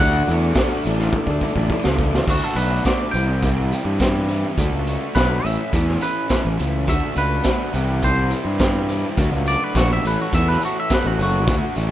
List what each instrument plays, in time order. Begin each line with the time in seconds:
Already playing: tonewheel organ A4 D5 F#5 D6
0.00 fingered electric bass D2, overdriven electric guitar A3 D4 F#4, clean electric guitar F#5
0.27 fingered electric bass E2, overdriven electric guitar A3, open hi-hat
0.31 overdriven electric guitar D4 F#4
0.55 overdriven electric guitar A3 D4, kick, snare, open hi-hat
0.59 overdriven electric guitar F#4
0.83 fingered electric bass A1, overdriven electric guitar E3, tonewheel organ E5, open hi-hat
0.87 overdriven electric guitar A3 D4
0.98 overdriven electric guitar D4, snare
1.03 overdriven electric guitar A3
1.13 kick
1.26 fingered electric bass D2, overdriven electric guitar A3 D4, kick
1.41 overdriven electric guitar E3 A3 D4, kick
1.56 fingered electric bass A1, overdriven electric guitar A3 D4, kick
1.70 overdriven electric guitar E3 A3 D4, kick
1.84 fingered electric bass C#2, overdriven electric guitar D4, snare
1.89 overdriven electric guitar A3
1.99 overdriven electric guitar E3 A3 D4, kick
2.13 overdriven electric guitar A3 D4, snare
2.27 fingered electric bass D2, overdriven electric guitar A3 D4 F#4, clean electric guitar F#4, kick, crash
2.44 clean electric guitar A4
2.55 fingered electric bass B1, overdriven electric guitar A3 D4 F#4, clean electric guitar B4, closed hi-hat
2.85 overdriven electric guitar A3 D4 F#4, clean electric guitar D5, kick, snare, closed hi-hat
3.11 fingered electric bass C2, overdriven electric guitar E3 C4, clean electric guitar G5, closed hi-hat
3.16 overdriven electric guitar E4 G4
3.43 overdriven electric guitar E3 C4 E4 G4, kick, closed hi-hat
3.72 overdriven electric guitar E3 C4 E4 G4, closed hi-hat
3.85 fingered electric bass G2
3.99 overdriven electric guitar E3 C4 E4 G4, kick, snare, closed hi-hat
4.29 overdriven electric guitar E3 C4 E4 G4, closed hi-hat
4.58 fingered electric bass D2, overdriven electric guitar A3 D4 F#4, kick, closed hi-hat
4.73 fingered electric bass C#2
4.87 overdriven electric guitar A3 D4 F#4, closed hi-hat
5.15 fingered electric bass B1, overdriven electric guitar A3 D4 F#4, clean electric guitar B4, kick, snare, closed hi-hat
5.44 fingered electric bass A1, overdriven electric guitar E3 A3 C#4, clean electric guitar E5, closed hi-hat
5.73 fingered electric bass E2, overdriven electric guitar E3 A3 C#4, kick, closed hi-hat
5.88 snare
6.00 overdriven electric guitar E3 A3 C#4, clean electric guitar B4, closed hi-hat
6.28 overdriven electric guitar E3 A3 C#4, kick, snare, closed hi-hat
6.45 fingered electric bass A1
6.58 fingered electric bass C#2, overdriven electric guitar E3 A3 C#4, closed hi-hat
6.86 fingered electric bass D2, overdriven electric guitar A3 D4 F#4, clean electric guitar E5, kick, closed hi-hat
7.15 fingered electric bass C#2, overdriven electric guitar A3 D4 F#4, clean electric guitar B4, closed hi-hat
7.44 overdriven electric guitar A3 D4 F#4, kick, snare, closed hi-hat
7.73 fingered electric bass C2, overdriven electric guitar E3 C4 E4 G4, closed hi-hat
8.02 overdriven electric guitar E3 C4 E4 G4, clean electric guitar C5, kick, closed hi-hat
8.30 overdriven electric guitar E3 C4 E4 G4, closed hi-hat
8.45 fingered electric bass G2
8.59 overdriven electric guitar E3 C4 E4 G4, kick, snare, closed hi-hat
8.89 overdriven electric guitar E3 C4 E4 G4, closed hi-hat
9.17 fingered electric bass D2, overdriven electric guitar F#3 A3 D4 F#4, kick, closed hi-hat
9.32 fingered electric bass C#2
9.46 overdriven electric guitar F#3 A3 D4 F#4, clean electric guitar D5, closed hi-hat
9.64 clean electric guitar B4
9.75 fingered electric bass A#1, overdriven electric guitar F#3 A3 D4, clean electric guitar F#4, kick, snare, closed hi-hat
9.79 overdriven electric guitar F#4
9.93 clean electric guitar E5
10.03 fingered electric bass A1, overdriven electric guitar E3 A3 C#4 A4, closed hi-hat
10.07 clean electric guitar B4
10.22 clean electric guitar F#4
10.32 fingered electric bass E2, overdriven electric guitar E3 A3 C#4 A4, clean electric guitar E5, kick, closed hi-hat
10.48 clean electric guitar B4, snare
10.61 overdriven electric guitar E3 A3 C#4 A4, clean electric guitar F#4, closed hi-hat
10.80 clean electric guitar E5
10.90 overdriven electric guitar E3 A3 C#4 A4, kick, snare, closed hi-hat
10.94 clean electric guitar B4
11.05 fingered electric bass A1, clean electric guitar F#4
11.19 fingered electric bass F#1, overdriven electric guitar E3 A3 C#4 A4, clean electric guitar F#4, closed hi-hat
11.47 fingered electric bass D2, overdriven electric guitar A3 D4 F#4, kick, closed hi-hat
11.76 fingered electric bass A1, overdriven electric guitar A3 D4 F#4, closed hi-hat